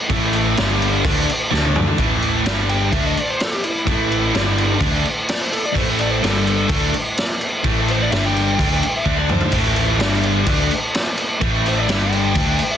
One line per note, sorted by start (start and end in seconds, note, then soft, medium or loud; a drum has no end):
0.00 0.56 A3 medium
0.00 0.56 E4 medium
0.00 0.56 B4 medium
0.10 0.54 A1 medium
0.10 0.56 A2 medium
0.10 0.57 E3 loud
0.10 0.57 A3 loud
0.10 kick loud
0.10 crash medium
0.33 crash medium
0.57 1.02 G1 loud
0.57 1.03 G2 medium
0.57 1.03 D3 loud
0.57 1.04 G3 loud
0.57 1.04 G3 medium
0.57 1.05 D4 medium
0.57 1.04 A4 medium
0.57 snare loud
0.57 crash medium
0.82 crash medium
1.05 1.26 D2 loud
1.05 1.27 D3 loud
1.05 1.27 A3 loud
1.05 1.52 A3 medium
1.05 1.27 D4 loud
1.05 1.52 E4 medium
1.05 1.52 B4 medium
1.05 kick loud
1.05 crash loud
1.29 crash medium
1.51 1.96 D2 loud
1.51 1.97 D3 medium
1.51 1.98 A3 loud
1.51 1.98 D4 loud
1.51 2.00 D4 medium
1.51 1.99 E5 medium
1.51 snare medium
1.55 2.00 A4 medium
1.65 high tom medium
1.76 mid tom loud
1.87 floor tom medium
1.98 2.42 A1 medium
1.98 2.45 A2 medium
1.98 2.45 E3 loud
1.98 2.46 A3 medium
1.98 2.46 E4 medium
1.98 2.46 B4 medium
1.98 kick loud
1.98 crash medium
2.22 crash medium
2.45 2.89 G1 medium
2.45 2.92 G2 medium
2.45 2.91 D3 medium
2.45 2.92 G3 medium
2.45 2.92 G3 loud
2.45 2.92 D4 medium
2.45 2.92 A4 medium
2.45 snare loud
2.45 crash medium
2.69 2.92 G5 loud
2.69 crash medium
2.92 3.15 D2 loud
2.92 3.15 D3 loud
2.92 3.16 A3 loud
2.92 4.34 A3 medium
2.92 3.16 D4 loud
2.92 4.33 E4 medium
2.92 4.33 B4 medium
2.92 3.04 E5 medium
2.92 kick loud
2.92 crash medium
3.07 3.17 D#5 medium
3.17 3.29 D5 medium
3.17 crash medium
3.30 3.43 C5 medium
3.40 3.54 A4 medium
3.40 snare loud
3.40 crash medium
3.54 3.65 G4 medium
3.64 3.87 E4 medium
3.64 crash medium
3.87 4.31 A1 medium
3.87 4.33 A2 medium
3.87 4.34 E3 medium
3.87 4.34 A3 loud
3.87 kick loud
3.87 crash medium
3.91 4.81 E4 medium
4.12 crash medium
4.34 4.78 G1 medium
4.34 4.80 G2 medium
4.34 4.79 D3 medium
4.34 4.81 G3 medium
4.34 4.80 G3 loud
4.34 4.80 D4 medium
4.34 4.81 A4 medium
4.34 snare loud
4.34 crash medium
4.58 crash medium
4.80 5.03 D2 loud
4.80 5.03 D3 medium
4.80 5.04 A3 loud
4.80 6.21 A3 medium
4.80 5.04 D4 loud
4.80 6.22 E4 medium
4.80 6.21 B4 medium
4.80 kick loud
4.80 crash medium
5.05 crash medium
5.29 5.41 D5 medium
5.29 snare loud
5.29 crash medium
5.42 5.53 C5 medium
5.52 5.63 A4 medium
5.52 crash medium
5.65 5.77 D5 medium
5.75 6.19 A1 medium
5.75 6.22 A2 loud
5.75 6.22 E3 medium
5.75 6.22 A3 loud
5.75 5.88 C5 medium
5.75 kick loud
5.75 crash medium
5.90 6.00 A4 medium
5.99 6.11 D5 medium
5.99 crash medium
6.11 6.22 C5 medium
6.22 6.67 G1 medium
6.22 6.69 G2 medium
6.22 6.68 D3 loud
6.22 6.69 G3 medium
6.22 6.70 G3 loud
6.22 6.70 D4 medium
6.22 6.44 A4 medium
6.22 6.70 A4 medium
6.22 snare loud
6.22 crash medium
6.45 6.92 A4 medium
6.45 crash medium
6.69 6.92 D2 loud
6.69 6.93 D3 loud
6.69 6.93 A3 loud
6.69 8.10 A3 medium
6.69 6.93 D4 loud
6.69 8.10 E4 medium
6.69 8.10 B4 medium
6.69 kick loud
6.69 crash medium
6.94 crash medium
7.18 snare loud
7.18 crash medium
7.41 crash medium
7.64 8.08 A1 medium
7.64 8.11 A2 medium
7.64 8.11 E3 loud
7.64 8.11 A3 loud
7.64 kick medium
7.64 crash medium
7.88 8.01 C5 medium
7.88 crash medium
8.02 8.12 D5 medium
8.11 8.56 G1 medium
8.11 8.58 G2 medium
8.11 8.57 D3 loud
8.11 8.58 G3 medium
8.11 8.58 G3 loud
8.11 8.58 D4 medium
8.11 8.59 A4 medium
8.11 8.23 E5 medium
8.11 snare loud
8.11 crash medium
8.25 8.93 G5 medium
8.36 crash medium
8.58 8.81 D2 loud
8.58 8.81 D3 loud
8.58 8.82 A3 loud
8.58 9.06 A3 medium
8.58 8.82 D4 loud
8.58 9.06 E4 medium
8.58 9.06 B4 medium
8.58 kick loud
8.58 crash medium
8.83 crash medium
8.97 9.18 E5 medium
9.06 9.50 D2 medium
9.06 9.53 D3 medium
9.06 9.53 A3 medium
9.06 9.53 D4 medium
9.06 9.53 A4 medium
9.06 9.53 E5 medium
9.06 kick medium
9.18 9.29 D5 medium
9.29 9.54 C5 loud
9.29 mid tom medium
9.41 floor tom medium
9.52 9.97 A1 medium
9.52 10.00 A2 medium
9.52 10.01 E3 loud
9.52 10.00 A3 medium
9.52 10.00 A3 loud
9.52 10.00 E4 medium
9.52 10.01 B4 medium
9.52 kick medium
9.52 crash medium
9.76 crash medium
9.98 10.43 G1 medium
9.98 10.46 G2 loud
9.98 10.45 D3 medium
9.98 10.47 G3 loud
9.98 10.48 G3 medium
9.98 10.47 D4 medium
9.98 10.47 A4 medium
9.98 snare loud
9.98 crash medium
10.23 crash medium
10.46 10.69 D2 loud
10.46 10.70 D3 loud
10.46 11.87 A3 medium
10.46 10.70 A3 loud
10.46 10.70 D4 loud
10.46 11.88 E4 medium
10.46 11.87 B4 medium
10.46 kick loud
10.46 crash medium
10.71 crash medium
10.94 snare loud
10.94 crash medium
11.18 crash medium
11.41 11.85 A1 medium
11.41 11.88 A2 medium
11.41 11.88 E3 loud
11.41 11.88 A3 medium
11.41 kick loud
11.41 crash medium
11.66 11.79 C5 medium
11.66 crash medium
11.79 11.92 D5 loud
11.88 12.33 G1 medium
11.88 12.35 G2 medium
11.88 12.34 D3 loud
11.88 12.36 G3 medium
11.88 12.35 G3 loud
11.88 12.36 D4 medium
11.88 12.35 A4 medium
11.88 12.02 E5 medium
11.88 snare loud
11.88 crash medium
12.02 12.70 G5 medium
12.12 crash medium
12.34 12.58 D2 loud
12.34 12.59 D3 loud
12.34 12.77 A3 medium
12.34 12.59 A3 loud
12.34 12.59 D4 loud
12.34 12.77 E4 medium
12.34 12.77 B4 medium
12.34 kick loud
12.34 crash medium
12.59 crash medium
12.71 12.77 E5 medium